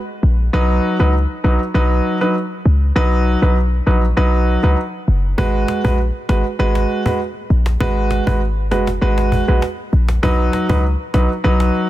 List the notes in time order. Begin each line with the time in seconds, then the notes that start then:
0.23 A#1
0.53 B1 F#3 D#4 B4
0.99 C#2 F#3 D#4 B4
1.44 B1 F#3 D#4 B4
1.74 B1 F#3 D#4 B4
2.21 F#3 D#4 B4
2.65 C#2
2.96 B1 F#3 D#4 B4
3.42 B1 F#3 D#4 B4
3.86 A#1 F#3 D#4 B4
4.17 B1 F#3 D#4 B4
4.63 C#2 F#3 D#4 B4
5.08 F#1
5.38 G#1 G#3 F#4 B4, cajon bass
5.68 cajon slap
5.84 A#1 G#3 F#4 B4, cajon bass
6.29 G#1 G#3 F#4 B4, cajon slap
6.59 G#1 G#3 F#4 B4
6.75 cajon slap
6.90 cajon slap
7.05 G#3 F#4 B4, cajon bass
7.50 A#1, cajon slap
7.66 cajon slap
7.80 G#1 G#3 F#4 B4, cajon bass
8.11 cajon slap
8.27 G#1 G#3 F#4 B4, cajon bass
8.71 F#1 G#3 F#4 B4, cajon slap
8.87 cajon slap
9.01 G#1 G#3 F#4 B4
9.18 cajon slap
9.32 cajon bass
9.48 A#1 G#3 F#4 B4
9.62 cajon slap
9.93 A#1, cajon slap
10.09 cajon slap
10.23 B1 F#3 D#4 B4, cajon bass
10.53 cajon slap
10.69 C#2 F#3 D#4 B4, cajon bass
11.14 B1 F#3 D#4 B4, cajon slap
11.44 B1 F#3 D#4 B4
11.60 cajon slap
11.74 cajon slap